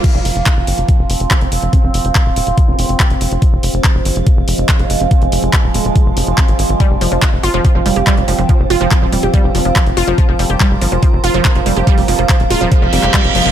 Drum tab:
CC |x---------------|----------------|----------------|----------------|
HH |x-oxx-oxx-oxxxox|x-oxx-oxx-oxxxox|x-oxx-oxx-oxxxox|xxoxx-oxx-oxxxox|
CP |----x-------x---|----x-------x---|----x-------x---|----x-------x---|
BD |o---o---o---o---|o---o---o---o---|o---o---o---o---|o---o---o---o---|

CC |----------------|----------------|----------------|----------------|
HH |x-oxx-oxx-oxxxox|x-oxx-oxx-oxxxox|x-oxx-oxx-oxxxox|xooxxxoxx-oxxxox|
CP |----x-------x---|----x-------x---|----x-------x---|----x------xx---|
BD |o---o---o---o---|o---o---o---o---|o---o---o---o---|o---o---o---o---|